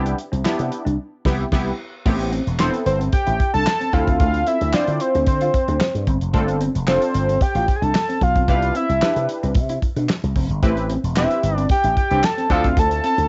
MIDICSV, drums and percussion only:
0, 0, Header, 1, 2, 480
1, 0, Start_track
1, 0, Tempo, 535714
1, 1842, Time_signature, 4, 2, 24, 8
1, 11901, End_track
2, 0, Start_track
2, 0, Title_t, "Drums"
2, 53, Note_on_c, 9, 42, 59
2, 142, Note_off_c, 9, 42, 0
2, 166, Note_on_c, 9, 42, 67
2, 255, Note_off_c, 9, 42, 0
2, 295, Note_on_c, 9, 42, 57
2, 385, Note_off_c, 9, 42, 0
2, 405, Note_on_c, 9, 39, 72
2, 412, Note_on_c, 9, 38, 92
2, 494, Note_off_c, 9, 39, 0
2, 501, Note_off_c, 9, 38, 0
2, 530, Note_on_c, 9, 42, 55
2, 620, Note_off_c, 9, 42, 0
2, 644, Note_on_c, 9, 42, 76
2, 734, Note_off_c, 9, 42, 0
2, 776, Note_on_c, 9, 42, 50
2, 866, Note_off_c, 9, 42, 0
2, 1122, Note_on_c, 9, 49, 79
2, 1123, Note_on_c, 9, 36, 110
2, 1128, Note_on_c, 9, 38, 107
2, 1212, Note_off_c, 9, 36, 0
2, 1212, Note_off_c, 9, 49, 0
2, 1217, Note_off_c, 9, 38, 0
2, 1362, Note_on_c, 9, 49, 87
2, 1363, Note_on_c, 9, 36, 107
2, 1368, Note_on_c, 9, 38, 108
2, 1452, Note_off_c, 9, 49, 0
2, 1453, Note_off_c, 9, 36, 0
2, 1457, Note_off_c, 9, 38, 0
2, 1842, Note_on_c, 9, 36, 117
2, 1842, Note_on_c, 9, 49, 109
2, 1932, Note_off_c, 9, 36, 0
2, 1932, Note_off_c, 9, 49, 0
2, 1971, Note_on_c, 9, 42, 52
2, 2060, Note_off_c, 9, 42, 0
2, 2083, Note_on_c, 9, 42, 69
2, 2173, Note_off_c, 9, 42, 0
2, 2213, Note_on_c, 9, 42, 56
2, 2303, Note_off_c, 9, 42, 0
2, 2322, Note_on_c, 9, 39, 79
2, 2329, Note_on_c, 9, 38, 96
2, 2412, Note_off_c, 9, 39, 0
2, 2418, Note_off_c, 9, 38, 0
2, 2451, Note_on_c, 9, 42, 58
2, 2540, Note_off_c, 9, 42, 0
2, 2563, Note_on_c, 9, 42, 82
2, 2652, Note_off_c, 9, 42, 0
2, 2694, Note_on_c, 9, 42, 50
2, 2784, Note_off_c, 9, 42, 0
2, 2798, Note_on_c, 9, 42, 97
2, 2802, Note_on_c, 9, 36, 127
2, 2888, Note_off_c, 9, 42, 0
2, 2892, Note_off_c, 9, 36, 0
2, 2926, Note_on_c, 9, 42, 59
2, 3015, Note_off_c, 9, 42, 0
2, 3044, Note_on_c, 9, 36, 103
2, 3045, Note_on_c, 9, 42, 69
2, 3134, Note_off_c, 9, 36, 0
2, 3135, Note_off_c, 9, 42, 0
2, 3170, Note_on_c, 9, 42, 52
2, 3260, Note_off_c, 9, 42, 0
2, 3282, Note_on_c, 9, 39, 92
2, 3289, Note_on_c, 9, 38, 119
2, 3372, Note_off_c, 9, 39, 0
2, 3379, Note_off_c, 9, 38, 0
2, 3413, Note_on_c, 9, 42, 56
2, 3503, Note_off_c, 9, 42, 0
2, 3521, Note_on_c, 9, 42, 76
2, 3522, Note_on_c, 9, 36, 85
2, 3610, Note_off_c, 9, 42, 0
2, 3612, Note_off_c, 9, 36, 0
2, 3649, Note_on_c, 9, 42, 53
2, 3651, Note_on_c, 9, 36, 98
2, 3738, Note_off_c, 9, 42, 0
2, 3741, Note_off_c, 9, 36, 0
2, 3760, Note_on_c, 9, 42, 86
2, 3762, Note_on_c, 9, 36, 127
2, 3850, Note_off_c, 9, 42, 0
2, 3852, Note_off_c, 9, 36, 0
2, 3887, Note_on_c, 9, 42, 53
2, 3977, Note_off_c, 9, 42, 0
2, 4000, Note_on_c, 9, 42, 72
2, 4090, Note_off_c, 9, 42, 0
2, 4130, Note_on_c, 9, 42, 53
2, 4220, Note_off_c, 9, 42, 0
2, 4238, Note_on_c, 9, 39, 81
2, 4245, Note_on_c, 9, 38, 103
2, 4328, Note_off_c, 9, 39, 0
2, 4335, Note_off_c, 9, 38, 0
2, 4365, Note_on_c, 9, 42, 60
2, 4455, Note_off_c, 9, 42, 0
2, 4478, Note_on_c, 9, 42, 84
2, 4568, Note_off_c, 9, 42, 0
2, 4611, Note_on_c, 9, 42, 52
2, 4701, Note_off_c, 9, 42, 0
2, 4716, Note_on_c, 9, 42, 99
2, 4721, Note_on_c, 9, 36, 119
2, 4806, Note_off_c, 9, 42, 0
2, 4810, Note_off_c, 9, 36, 0
2, 4845, Note_on_c, 9, 42, 56
2, 4934, Note_off_c, 9, 42, 0
2, 4963, Note_on_c, 9, 36, 92
2, 4963, Note_on_c, 9, 42, 75
2, 5053, Note_off_c, 9, 36, 0
2, 5053, Note_off_c, 9, 42, 0
2, 5089, Note_on_c, 9, 42, 50
2, 5178, Note_off_c, 9, 42, 0
2, 5199, Note_on_c, 9, 39, 97
2, 5206, Note_on_c, 9, 38, 113
2, 5288, Note_off_c, 9, 39, 0
2, 5295, Note_off_c, 9, 38, 0
2, 5331, Note_on_c, 9, 42, 56
2, 5421, Note_off_c, 9, 42, 0
2, 5439, Note_on_c, 9, 42, 83
2, 5440, Note_on_c, 9, 36, 94
2, 5529, Note_off_c, 9, 36, 0
2, 5529, Note_off_c, 9, 42, 0
2, 5566, Note_on_c, 9, 42, 51
2, 5656, Note_off_c, 9, 42, 0
2, 5678, Note_on_c, 9, 42, 85
2, 5680, Note_on_c, 9, 36, 120
2, 5767, Note_off_c, 9, 42, 0
2, 5770, Note_off_c, 9, 36, 0
2, 5808, Note_on_c, 9, 42, 54
2, 5897, Note_off_c, 9, 42, 0
2, 5920, Note_on_c, 9, 42, 69
2, 6009, Note_off_c, 9, 42, 0
2, 6050, Note_on_c, 9, 42, 57
2, 6140, Note_off_c, 9, 42, 0
2, 6158, Note_on_c, 9, 39, 81
2, 6165, Note_on_c, 9, 38, 103
2, 6247, Note_off_c, 9, 39, 0
2, 6254, Note_off_c, 9, 38, 0
2, 6287, Note_on_c, 9, 42, 63
2, 6377, Note_off_c, 9, 42, 0
2, 6401, Note_on_c, 9, 42, 85
2, 6491, Note_off_c, 9, 42, 0
2, 6533, Note_on_c, 9, 42, 52
2, 6623, Note_off_c, 9, 42, 0
2, 6637, Note_on_c, 9, 42, 91
2, 6640, Note_on_c, 9, 36, 121
2, 6727, Note_off_c, 9, 42, 0
2, 6729, Note_off_c, 9, 36, 0
2, 6764, Note_on_c, 9, 42, 60
2, 6854, Note_off_c, 9, 42, 0
2, 6882, Note_on_c, 9, 36, 102
2, 6883, Note_on_c, 9, 42, 70
2, 6972, Note_off_c, 9, 36, 0
2, 6972, Note_off_c, 9, 42, 0
2, 7010, Note_on_c, 9, 42, 53
2, 7099, Note_off_c, 9, 42, 0
2, 7120, Note_on_c, 9, 39, 89
2, 7127, Note_on_c, 9, 38, 123
2, 7209, Note_off_c, 9, 39, 0
2, 7216, Note_off_c, 9, 38, 0
2, 7253, Note_on_c, 9, 42, 57
2, 7343, Note_off_c, 9, 42, 0
2, 7360, Note_on_c, 9, 36, 91
2, 7362, Note_on_c, 9, 42, 78
2, 7450, Note_off_c, 9, 36, 0
2, 7451, Note_off_c, 9, 42, 0
2, 7487, Note_on_c, 9, 42, 52
2, 7489, Note_on_c, 9, 36, 90
2, 7577, Note_off_c, 9, 42, 0
2, 7578, Note_off_c, 9, 36, 0
2, 7600, Note_on_c, 9, 36, 109
2, 7601, Note_on_c, 9, 42, 89
2, 7690, Note_off_c, 9, 36, 0
2, 7690, Note_off_c, 9, 42, 0
2, 7727, Note_on_c, 9, 42, 59
2, 7817, Note_off_c, 9, 42, 0
2, 7840, Note_on_c, 9, 42, 69
2, 7930, Note_off_c, 9, 42, 0
2, 7971, Note_on_c, 9, 42, 55
2, 8061, Note_off_c, 9, 42, 0
2, 8081, Note_on_c, 9, 39, 81
2, 8087, Note_on_c, 9, 38, 106
2, 8170, Note_off_c, 9, 39, 0
2, 8177, Note_off_c, 9, 38, 0
2, 8209, Note_on_c, 9, 42, 60
2, 8299, Note_off_c, 9, 42, 0
2, 8323, Note_on_c, 9, 42, 81
2, 8412, Note_off_c, 9, 42, 0
2, 8453, Note_on_c, 9, 42, 52
2, 8543, Note_off_c, 9, 42, 0
2, 8554, Note_on_c, 9, 42, 97
2, 8560, Note_on_c, 9, 36, 127
2, 8644, Note_off_c, 9, 42, 0
2, 8649, Note_off_c, 9, 36, 0
2, 8685, Note_on_c, 9, 42, 59
2, 8774, Note_off_c, 9, 42, 0
2, 8803, Note_on_c, 9, 36, 87
2, 8803, Note_on_c, 9, 42, 66
2, 8892, Note_off_c, 9, 36, 0
2, 8892, Note_off_c, 9, 42, 0
2, 8929, Note_on_c, 9, 42, 50
2, 9018, Note_off_c, 9, 42, 0
2, 9041, Note_on_c, 9, 39, 92
2, 9048, Note_on_c, 9, 38, 112
2, 9131, Note_off_c, 9, 39, 0
2, 9138, Note_off_c, 9, 38, 0
2, 9174, Note_on_c, 9, 42, 53
2, 9264, Note_off_c, 9, 42, 0
2, 9281, Note_on_c, 9, 36, 87
2, 9281, Note_on_c, 9, 46, 76
2, 9371, Note_off_c, 9, 36, 0
2, 9371, Note_off_c, 9, 46, 0
2, 9407, Note_on_c, 9, 42, 53
2, 9497, Note_off_c, 9, 42, 0
2, 9522, Note_on_c, 9, 36, 119
2, 9522, Note_on_c, 9, 42, 83
2, 9611, Note_off_c, 9, 42, 0
2, 9612, Note_off_c, 9, 36, 0
2, 9650, Note_on_c, 9, 42, 56
2, 9740, Note_off_c, 9, 42, 0
2, 9762, Note_on_c, 9, 42, 73
2, 9852, Note_off_c, 9, 42, 0
2, 9894, Note_on_c, 9, 42, 57
2, 9984, Note_off_c, 9, 42, 0
2, 10001, Note_on_c, 9, 39, 85
2, 10008, Note_on_c, 9, 38, 104
2, 10091, Note_off_c, 9, 39, 0
2, 10097, Note_off_c, 9, 38, 0
2, 10131, Note_on_c, 9, 42, 65
2, 10221, Note_off_c, 9, 42, 0
2, 10245, Note_on_c, 9, 42, 84
2, 10335, Note_off_c, 9, 42, 0
2, 10375, Note_on_c, 9, 42, 54
2, 10464, Note_off_c, 9, 42, 0
2, 10476, Note_on_c, 9, 42, 101
2, 10481, Note_on_c, 9, 36, 126
2, 10566, Note_off_c, 9, 42, 0
2, 10570, Note_off_c, 9, 36, 0
2, 10606, Note_on_c, 9, 42, 63
2, 10696, Note_off_c, 9, 42, 0
2, 10724, Note_on_c, 9, 36, 98
2, 10724, Note_on_c, 9, 42, 73
2, 10813, Note_off_c, 9, 36, 0
2, 10813, Note_off_c, 9, 42, 0
2, 10848, Note_on_c, 9, 42, 52
2, 10938, Note_off_c, 9, 42, 0
2, 10962, Note_on_c, 9, 39, 91
2, 10969, Note_on_c, 9, 38, 117
2, 11052, Note_off_c, 9, 39, 0
2, 11059, Note_off_c, 9, 38, 0
2, 11095, Note_on_c, 9, 42, 56
2, 11184, Note_off_c, 9, 42, 0
2, 11200, Note_on_c, 9, 42, 77
2, 11201, Note_on_c, 9, 36, 87
2, 11290, Note_off_c, 9, 36, 0
2, 11290, Note_off_c, 9, 42, 0
2, 11327, Note_on_c, 9, 42, 54
2, 11329, Note_on_c, 9, 36, 88
2, 11417, Note_off_c, 9, 42, 0
2, 11419, Note_off_c, 9, 36, 0
2, 11441, Note_on_c, 9, 36, 115
2, 11441, Note_on_c, 9, 42, 98
2, 11530, Note_off_c, 9, 42, 0
2, 11531, Note_off_c, 9, 36, 0
2, 11567, Note_on_c, 9, 42, 61
2, 11657, Note_off_c, 9, 42, 0
2, 11681, Note_on_c, 9, 42, 74
2, 11770, Note_off_c, 9, 42, 0
2, 11810, Note_on_c, 9, 42, 59
2, 11900, Note_off_c, 9, 42, 0
2, 11901, End_track
0, 0, End_of_file